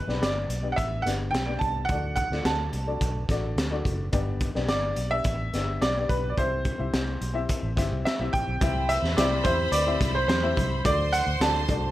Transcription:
Already playing: B4
0.08 B1 B3 D4 G4 D5, snare
0.21 G1 D5, snare, closed hi-hat
0.49 B1, closed hi-hat
0.63 B3 D4 G4 D5
0.72 F#5
0.76 A1 E5, kick, closed hi-hat
1.02 G1 B3 D4 F#5
1.06 G4 D5, snare, closed hi-hat
1.31 B1 G5, closed hi-hat
1.35 snare
1.46 B3 D4 G4 D5
1.59 C2 A5, kick, closed hi-hat
1.85 F#5, closed hi-hat
1.89 D2 A3 D4 F#4 D5, kick
2.16 F#5, kick, closed hi-hat
2.30 D2 A3 D4 F4 D5, snare
2.39 F#4
2.45 D2 A5, snare, closed hi-hat
2.73 C2, closed hi-hat
2.87 A3 D4 F#4 D5
3.01 B1, kick, closed hi-hat
3.29 A1 A3 D4 F#4 D5, kick, snare, closed hi-hat
3.56 D2, snare, closed hi-hat
3.71 A3 D4 F#4 D5
3.85 F#1, kick, closed hi-hat
4.12 G1 B3 D4 G4 D5, kick, closed hi-hat
4.41 kick, closed hi-hat
4.55 B1 B3 D4 G4 D5, snare
4.68 G1 D5, snare, closed hi-hat
4.96 B1, closed hi-hat
5.11 B3 D4 G4 D5 E5
5.24 A1, kick, closed hi-hat
5.53 G1 B3 D4 G4 D5, snare, closed hi-hat
5.81 B1 D5, snare, closed hi-hat
5.97 B3 D4 G4 D5
6.09 B1 B4, kick, closed hi-hat
6.30 D5
6.38 C2 C4 E4 G4 C5 E5, kick, closed hi-hat
6.65 kick, closed hi-hat
6.78 C2 C4 E4 G4 E5
6.93 C2, snare, closed hi-hat
7.21 B1, closed hi-hat
7.34 C4 E4 G4 E5
7.49 kick, closed hi-hat
7.63 A1
7.77 G1 C4 E4 G4 E5, kick, snare, closed hi-hat
7.92 C2
8.05 E5, snare, closed hi-hat
8.19 B1 C4 E4 G4 E5
8.33 A1 G5, kick, closed hi-hat
8.48 B1
8.61 C2 C4 E4 G4 C5 E5 B5, kick, closed hi-hat, muted conga
8.89 E5, closed hi-hat
9.02 E2, snare
9.17 C2 C4 E4 G4 D5 E5, snare, closed hi-hat, high conga
9.44 E2 C4 E4 G4 C5 E5, kick, closed hi-hat, muted conga
9.72 D2 D5, closed hi-hat
9.86 C4 E4 G4 E5
10.01 C2, kick, snare, closed hi-hat, muted conga
10.15 C5
10.28 E2 C5, snare, closed hi-hat, high conga
10.43 C4 E4 G4 E5
10.57 C2, kick, closed hi-hat, high conga
10.85 D2 A3 D4 F#4 C5 D5 C6, kick, closed hi-hat, muted conga
11.12 F#5, closed hi-hat
11.27 D2
11.40 D2 A3 D4 F#4 D5 A5, snare, closed hi-hat, high conga
11.68 C2 A3 D4 F#4 D5, kick, closed hi-hat, muted conga, low conga

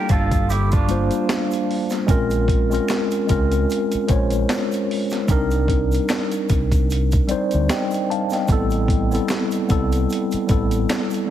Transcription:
Already playing: G3 A#3 D4 E4 F4 G4 A4
0.09 G1 F4 A4, kick, closed hi-hat, shaker
0.31 kick, closed hi-hat, shaker
0.50 E4 G4, closed hi-hat, shaker
0.71 D4 F4, kick, closed hi-hat, shaker
0.87 G3 A#3 D4 F4 C5, closed hi-hat, shaker
1.11 closed hi-hat, shaker
1.29 finger snap, snare, closed hi-hat, shaker
1.51 closed hi-hat, shaker
1.71 open hi-hat
1.90 snare, closed hi-hat, shaker
2.07 A#1 G#3 C4 C#4 F4 A#4, kick, closed hi-hat, shaker
2.30 closed hi-hat, shaker
2.48 kick, closed hi-hat
2.70 G#3 C4 C#4 F4, shaker
2.74 A#4, closed hi-hat
2.88 finger snap, snare, closed hi-hat, shaker
3.11 closed hi-hat, shaker
3.27 C#2 G#3 C4 C#4 F4 A#4, kick, closed hi-hat, shaker
3.52 closed hi-hat, shaker
3.70 closed hi-hat, shaker
3.92 muted fingered electric bass stroke, closed hi-hat, shaker
4.08 A#1 G#3 C#4 F4 C5 C#5, kick, closed hi-hat, shaker
4.30 closed hi-hat, shaker
4.49 finger snap, snare, closed hi-hat, shaker
4.72 closed hi-hat, shaker
4.91 open hi-hat
5.10 snare, closed hi-hat, shaker
5.28 C2 G3 C4 D4 D#4 A#4, kick, closed hi-hat, shaker
5.51 closed hi-hat, shaker
5.68 kick, closed hi-hat
5.92 closed hi-hat, shaker
6.09 finger snap, snare, closed hi-hat, shaker
6.31 closed hi-hat, shaker
6.49 C2, kick, closed hi-hat, shaker
6.72 kick, closed hi-hat, shaker
6.90 closed hi-hat, shaker
7.12 kick, closed hi-hat, shaker
7.28 G3 C4 D#4 C5 D5, muted fingered electric bass stroke, closed hi-hat, shaker
7.51 D2, closed hi-hat, shaker
7.69 D#5 G5, finger snap, snare, closed hi-hat, shaker
7.91 closed hi-hat, shaker
8.10 F5 A5, closed hi-hat
8.30 D#5 G5, snare, closed hi-hat, shaker
8.48 A1 G3 B3 C4 E4, kick, closed hi-hat, shaker
8.52 A4
8.70 closed hi-hat, shaker
8.88 kick, closed hi-hat
9.11 G3 B3 C4 E4 A4, closed hi-hat, shaker
9.28 finger snap, snare, closed hi-hat, shaker
9.51 closed hi-hat, shaker
9.68 C2 G3 B3 C4 E4 A4, kick, closed hi-hat, shaker
9.92 closed hi-hat, shaker
10.10 closed hi-hat, shaker
10.31 muted fingered electric bass stroke, closed hi-hat, shaker
10.47 A1 G3 B3 C4 E4, kick, closed hi-hat, shaker
10.51 A4
10.71 closed hi-hat, shaker
10.89 finger snap, snare, closed hi-hat, shaker
11.10 closed hi-hat, shaker
11.27 G3

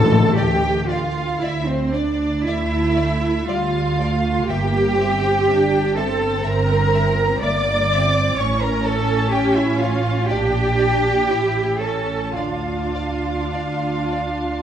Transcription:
Already playing: A1 D3 A4 A5
0.03 A2
0.11 A2
0.20 A2
0.28 A2
0.37 D2 D3 G4 D5 G5
0.89 F4 D5 F5
1.40 D2 E4 D5 E5
1.67 C4 C5
1.93 D4 D5
2.45 D2 A3 E4 D5 E5
2.96 D5
3.48 D2 G3 F4 D5 F5
3.99 A3 D5
4.49 G1 A#3 G4 E5 G5
5.00 C4 E5
5.49 G1 D4 E5
5.96 C4 A4 E5 A5
6.43 G1 A#4 E5 A#5
6.94 E5
7.41 G1 A#3 D5 E5 D6
7.91 C4 E5
8.37 A1 C#4 C#5 C#6
8.61 A#4 A#5
8.85 A4 C#5 A5
9.32 A1 G4 C#5 G5
9.55 E4 E5
9.78 F4 F5
9.82 C#5
10.27 A#1 D4 G4 D5 G5
10.78 D5
11.27 A1 E4 C#5
11.80 C#4 A4 C#5 A5
12.36 D2 D4 F4 D5 F5
12.95 D5
13.53 D2 D5
14.12 D5

